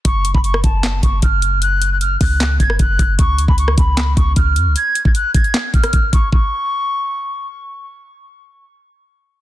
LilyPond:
<<
  \new Staff \with { instrumentName = "Flute" } { \time 4/4 \key fis \minor \tempo 4 = 153 cis'''8. b''16 cis'''8 a''4 cis'''8 eis'''4 | fis'''8. fis'''16 eis'''8 fis'''4 gis'''8 fis'''4 | cis'''8. b''16 cis'''8 b''4 cis'''8 eis'''4 | gis'''8. gis'''16 fis'''8 gis'''4 eis'''4 cis'''8 |
cis'''2. r4 | r1 | }
  \new Staff \with { instrumentName = "808-style bass" } { \clef bass \time 4/4 \key fis \minor fis,,8. fis,,8. fis,,4 fis,,8 fis,,4~ | fis,,4. cis,4 fis,,8 fis,,8 fis,,8 | cis,8 d,16 cis,8. cis,4 cis,8 cis,8 eis,16 cis,16 | r1 |
r1 | r1 | }
  \new DrumStaff \with { instrumentName = "Drums" } \drummode { \time 4/4 <hh bd>8 hh16 bd16 hh16 ss16 <hh bd>8 <hc hh sn>8 <hh bd>8 <hh bd>8 hh8 | hh8 hh8 hh8 <hho bd>8 <hc hh sn>8 <hh bd>16 ss16 <hh bd>8 <hh bd>8 | <hh bd>8 hh16 bd16 hh16 ss16 <hh bd>8 <hc hh sn>8 <hh bd>8 <hh bd>8 hh8 | hh8 hh16 bd16 hh8 <hh hho bd>16 hh16 <hc hh sn>8 <hh bd>16 <hh ss>16 <hh bd>8 <hh bd>8 |
bd4 r4 r4 r4 | r4 r4 r4 r4 | }
>>